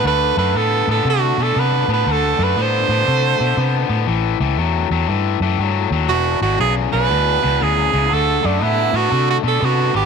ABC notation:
X:1
M:4/4
L:1/16
Q:"Swing" 1/4=119
K:D
V:1 name="Tenor saxophone"
B2 B2 A2 A2 F2 A2 B2 B2 | A2 B2 =c12 | z16 | F2 F2 ^G2 B6 G4 |
A2 D3/2 ^D/2 E2 F2- (3F2 F2 A2 F2 G2 |]
V:2 name="Overdriven electric guitar" clef=bass
[D,A,]2 [D,A,]2 [D,B,]2 [D,B,]2 [D,A,]2 [D,A,]2 [D,B,]2 [D,B,]2 | [D,A,]2 [D,A,]2 [D,B,]2 [D,B,]2 [D,A,]2 [D,A,]2 [D,B,]2 [D,B,]2 | [A,,E,]2 [A,,E,]2 [A,,F,]2 [A,,F,]2 [A,,E,]2 [A,,E,]2 [A,,F,]2 [A,,F,]2 | [E,,B,,]2 [E,,B,,]2 [E,,C,]2 [E,,C,]2 [E,,B,,]2 [E,,B,,]2 [E,,C,]2 [E,,C,]2 |
[D,A,]2 [D,A,]2 [D,B,]2 [D,B,]2 [D,A,]2 [D,A,]2 [D,B,]2 [D,B,]2 |]
V:3 name="Fingered electric bass" clef=bass
D,,2 F,,2 A,,2 A,,2 =C,2 B,,2 C,2 A,,2 | D,,2 F,,2 A,,2 A,,2 =C,2 B,,2 C,2 A,,2 | A,,,2 C,,2 E,,2 E,,2 G,,2 F,,2 G,,2 ^D,,2 | E,,,2 ^G,,,2 B,,,2 B,,,2 D,,2 C,,2 D,,2 C,,2 |
D,,2 F,,2 A,,2 A,,2 =C,2 B,,2 C,2 ^G,,,2 |]